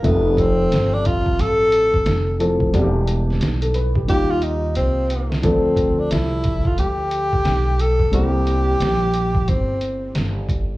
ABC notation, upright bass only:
X:1
M:4/4
L:1/16
Q:"Swing 16ths" 1/4=89
K:Flyd
V:1 name="Upright bass" clef=bass
F,,,4 G,,,4 A,,,4 F,,,4 | E,,,4 B,,,4 _E,,4 C,,4 | D,,4 C,,3 z D,,4 B,,,4 | C,,4 _B,,,4 G,,,4 G,,,4 |]